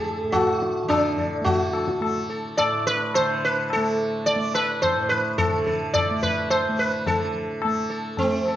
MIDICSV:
0, 0, Header, 1, 4, 480
1, 0, Start_track
1, 0, Tempo, 560224
1, 284, Time_signature, 4, 2, 24, 8
1, 7336, End_track
2, 0, Start_track
2, 0, Title_t, "Sitar"
2, 0, Program_c, 0, 104
2, 0, Note_on_c, 0, 69, 97
2, 277, Note_on_c, 0, 66, 92
2, 297, Note_off_c, 0, 69, 0
2, 755, Note_off_c, 0, 66, 0
2, 758, Note_on_c, 0, 62, 84
2, 1011, Note_on_c, 0, 69, 33
2, 1234, Note_off_c, 0, 62, 0
2, 1235, Note_off_c, 0, 69, 0
2, 1237, Note_on_c, 0, 66, 78
2, 1483, Note_on_c, 0, 69, 36
2, 1711, Note_off_c, 0, 69, 0
2, 1933, Note_off_c, 0, 66, 0
2, 1968, Note_on_c, 0, 69, 36
2, 2194, Note_off_c, 0, 69, 0
2, 2206, Note_on_c, 0, 74, 97
2, 2453, Note_off_c, 0, 74, 0
2, 2457, Note_on_c, 0, 71, 92
2, 2697, Note_off_c, 0, 71, 0
2, 2700, Note_on_c, 0, 72, 95
2, 2945, Note_off_c, 0, 72, 0
2, 2952, Note_on_c, 0, 71, 80
2, 3191, Note_off_c, 0, 71, 0
2, 3195, Note_on_c, 0, 69, 68
2, 3410, Note_off_c, 0, 69, 0
2, 3650, Note_on_c, 0, 74, 105
2, 3877, Note_off_c, 0, 74, 0
2, 3896, Note_on_c, 0, 71, 85
2, 4125, Note_off_c, 0, 71, 0
2, 4129, Note_on_c, 0, 72, 90
2, 4363, Note_on_c, 0, 71, 81
2, 4380, Note_off_c, 0, 72, 0
2, 4605, Note_off_c, 0, 71, 0
2, 4609, Note_on_c, 0, 69, 74
2, 4835, Note_off_c, 0, 69, 0
2, 4853, Note_on_c, 0, 69, 37
2, 5077, Note_off_c, 0, 69, 0
2, 5086, Note_on_c, 0, 74, 98
2, 5313, Note_off_c, 0, 74, 0
2, 5334, Note_on_c, 0, 71, 80
2, 5557, Note_off_c, 0, 71, 0
2, 5572, Note_on_c, 0, 72, 85
2, 5818, Note_on_c, 0, 71, 70
2, 5819, Note_off_c, 0, 72, 0
2, 6055, Note_on_c, 0, 69, 32
2, 6056, Note_off_c, 0, 71, 0
2, 6059, Note_off_c, 0, 69, 0
2, 6059, Note_on_c, 0, 69, 66
2, 6738, Note_off_c, 0, 69, 0
2, 6768, Note_on_c, 0, 69, 36
2, 6990, Note_off_c, 0, 69, 0
2, 7013, Note_on_c, 0, 60, 76
2, 7264, Note_on_c, 0, 69, 35
2, 7336, Note_off_c, 0, 60, 0
2, 7336, Note_off_c, 0, 69, 0
2, 7336, End_track
3, 0, Start_track
3, 0, Title_t, "Tanpura"
3, 0, Program_c, 1, 104
3, 0, Note_on_c, 1, 45, 51
3, 0, Note_on_c, 1, 50, 57
3, 0, Note_on_c, 1, 57, 61
3, 196, Note_off_c, 1, 45, 0
3, 199, Note_on_c, 1, 45, 58
3, 712, Note_off_c, 1, 50, 0
3, 715, Note_on_c, 1, 50, 54
3, 1208, Note_off_c, 1, 57, 0
3, 1208, Note_on_c, 1, 57, 61
3, 1719, Note_off_c, 1, 57, 0
3, 1719, Note_on_c, 1, 57, 64
3, 2219, Note_off_c, 1, 45, 0
3, 2223, Note_on_c, 1, 45, 61
3, 2721, Note_off_c, 1, 50, 0
3, 2725, Note_on_c, 1, 50, 68
3, 3221, Note_off_c, 1, 57, 0
3, 3221, Note_on_c, 1, 57, 57
3, 3732, Note_off_c, 1, 57, 0
3, 3732, Note_on_c, 1, 57, 64
3, 4230, Note_off_c, 1, 45, 0
3, 4233, Note_on_c, 1, 45, 58
3, 4722, Note_off_c, 1, 50, 0
3, 4725, Note_on_c, 1, 50, 67
3, 5229, Note_off_c, 1, 57, 0
3, 5229, Note_on_c, 1, 57, 65
3, 5729, Note_off_c, 1, 57, 0
3, 5729, Note_on_c, 1, 57, 58
3, 6054, Note_off_c, 1, 50, 0
3, 6054, Note_on_c, 1, 50, 61
3, 6549, Note_off_c, 1, 57, 0
3, 6549, Note_on_c, 1, 57, 66
3, 7049, Note_off_c, 1, 57, 0
3, 7049, Note_on_c, 1, 57, 54
3, 7336, Note_off_c, 1, 45, 0
3, 7336, Note_off_c, 1, 50, 0
3, 7336, Note_off_c, 1, 57, 0
3, 7336, End_track
4, 0, Start_track
4, 0, Title_t, "Tabla"
4, 285, Note_on_c, 9, 60, 80
4, 285, Note_on_c, 9, 64, 68
4, 371, Note_off_c, 9, 60, 0
4, 371, Note_off_c, 9, 64, 0
4, 532, Note_on_c, 9, 62, 60
4, 618, Note_off_c, 9, 62, 0
4, 771, Note_on_c, 9, 60, 80
4, 771, Note_on_c, 9, 64, 71
4, 857, Note_off_c, 9, 60, 0
4, 857, Note_off_c, 9, 64, 0
4, 1009, Note_on_c, 9, 64, 51
4, 1095, Note_off_c, 9, 64, 0
4, 1250, Note_on_c, 9, 63, 72
4, 1250, Note_on_c, 9, 64, 64
4, 1335, Note_off_c, 9, 63, 0
4, 1335, Note_off_c, 9, 64, 0
4, 1486, Note_on_c, 9, 60, 55
4, 1571, Note_off_c, 9, 60, 0
4, 1608, Note_on_c, 9, 37, 61
4, 1694, Note_off_c, 9, 37, 0
4, 1731, Note_on_c, 9, 60, 67
4, 1816, Note_off_c, 9, 60, 0
4, 2216, Note_on_c, 9, 60, 79
4, 2302, Note_off_c, 9, 60, 0
4, 2694, Note_on_c, 9, 60, 84
4, 2779, Note_off_c, 9, 60, 0
4, 3172, Note_on_c, 9, 60, 76
4, 3257, Note_off_c, 9, 60, 0
4, 3654, Note_on_c, 9, 63, 67
4, 3740, Note_off_c, 9, 63, 0
4, 3893, Note_on_c, 9, 60, 56
4, 3979, Note_off_c, 9, 60, 0
4, 4139, Note_on_c, 9, 60, 77
4, 4139, Note_on_c, 9, 64, 64
4, 4225, Note_off_c, 9, 60, 0
4, 4225, Note_off_c, 9, 64, 0
4, 4612, Note_on_c, 9, 60, 76
4, 4612, Note_on_c, 9, 64, 72
4, 4698, Note_off_c, 9, 60, 0
4, 4698, Note_off_c, 9, 64, 0
4, 4855, Note_on_c, 9, 64, 55
4, 4941, Note_off_c, 9, 64, 0
4, 5097, Note_on_c, 9, 60, 71
4, 5097, Note_on_c, 9, 64, 60
4, 5183, Note_off_c, 9, 60, 0
4, 5183, Note_off_c, 9, 64, 0
4, 5337, Note_on_c, 9, 64, 47
4, 5423, Note_off_c, 9, 64, 0
4, 5577, Note_on_c, 9, 60, 69
4, 5662, Note_off_c, 9, 60, 0
4, 6053, Note_on_c, 9, 63, 99
4, 6053, Note_on_c, 9, 64, 84
4, 6139, Note_off_c, 9, 63, 0
4, 6139, Note_off_c, 9, 64, 0
4, 6526, Note_on_c, 9, 60, 77
4, 6612, Note_off_c, 9, 60, 0
4, 7003, Note_on_c, 9, 63, 69
4, 7003, Note_on_c, 9, 64, 70
4, 7088, Note_off_c, 9, 63, 0
4, 7088, Note_off_c, 9, 64, 0
4, 7245, Note_on_c, 9, 60, 52
4, 7330, Note_off_c, 9, 60, 0
4, 7336, End_track
0, 0, End_of_file